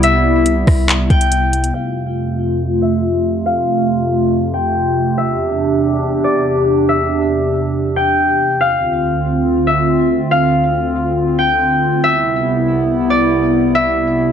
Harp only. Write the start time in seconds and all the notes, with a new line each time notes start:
Already playing: D5
0.03 E5
1.10 G5
1.75 F5
2.82 E5
3.46 F5
4.54 G5
5.18 E5
6.24 D5
6.89 E5
7.96 G5
8.61 F5
9.67 E5
10.31 F5
11.39 G5
12.04 E5
13.10 D5
13.75 E5